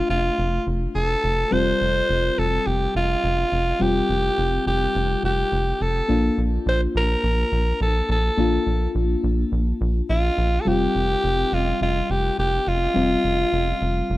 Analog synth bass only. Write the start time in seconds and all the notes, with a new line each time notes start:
0.10 F1
0.39 F1
0.67 F1
0.95 F1
1.24 F1
1.53 F1
1.81 F1
2.10 F1
2.38 F1
2.67 F1
2.95 F1
3.24 F1
3.52 F1
3.81 F1
4.09 F1
4.38 F1
4.67 F1
4.95 F1
5.23 F1
5.52 F1
5.81 F1
6.09 A#1
6.38 A#1
6.66 A#1
6.95 A#1
7.24 A#1
7.52 A#1
7.81 A#1
8.09 A#1
8.38 A#1
8.67 A#1
8.95 A#1
9.24 A#1
9.52 A#1
9.81 A#1
10.10 A#1
10.38 A#1
10.66 F1
10.95 F1
11.24 F1
11.52 F1
11.81 F1
12.10 F1
12.39 F1
12.67 F1
12.96 F1
13.24 F1
13.53 F1
13.82 F1
14.10 F1